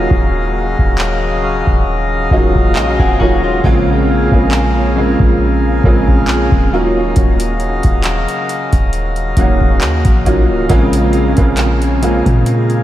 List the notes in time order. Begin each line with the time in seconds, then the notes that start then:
Already playing: C#3 D#3 F#3 A#3 C#4 F4 D#5 F5
0.11 D#1, kick
0.79 D#1, kick
0.98 clap
1.43 F5
1.67 D#1, kick
2.31 D#1 D#3 F#3 A#3 C#4 F4 D#5, kick
2.55 kick
2.76 A#1 G#3 F4 F5, clap
2.99 D#1 C4 G#4 F#5, kick
3.20 D#3 F#3 A#3 C#4 F4 F#4 G#5, kick
3.44 G#3 F4
3.63 A#1 C#3 G#3 A#3 C4 F4 G#4 A#4 F5, kick
4.31 A#1 C#3 G#3 A#3 C4 F4, kick
4.51 clap
4.96 C#3 G#3 A#3 C4 F4
5.19 A#1, kick
5.84 A#1 C#3 G#3 A#3 C4 F4, kick
6.08 kick
6.28 clap
6.52 D#1, kick
6.72 D#3 F#3 A#3 C#4 F4 D#5
7.16 D#1, kick, closed hi-hat
7.40 closed hi-hat
7.60 closed hi-hat
7.83 D#1, kick, closed hi-hat
8.04 clap, closed hi-hat
8.28 closed hi-hat
8.49 closed hi-hat
8.72 D#1, kick, closed hi-hat
8.93 closed hi-hat
9.16 closed hi-hat
9.36 D#1 D#3 F#3 A#3 C#4 F#4, kick, closed hi-hat
9.61 kick
9.81 D#2, clap, closed hi-hat
10.05 A#1, kick, closed hi-hat
10.25 D#3 F#3 A#3 C#4 F4, kick, closed hi-hat
10.49 C#1
10.69 A#1 C#3 G#3 A#3 C4 F4 G#4 A#4, kick, closed hi-hat
10.93 closed hi-hat
11.13 closed hi-hat
11.37 A#1 C#3 G#3 A#3 C4 F4, kick, closed hi-hat
11.57 clap, closed hi-hat
11.82 closed hi-hat
12.02 C#3 G#3 A#3 C4 F4, closed hi-hat
12.26 A#2, kick, closed hi-hat
12.46 closed hi-hat
12.70 closed hi-hat